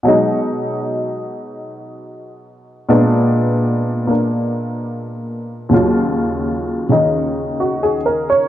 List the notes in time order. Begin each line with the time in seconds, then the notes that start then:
0.03 B2 F#3 G#3
0.08 D#4
2.89 A#2 G#3 B3 D4
4.07 A#3 D4
5.69 D#2 C#3 F#3
5.74 F4
6.89 C#3 D#3 D#4
7.60 F#4
7.83 G#4
8.06 A#4
8.30 C#5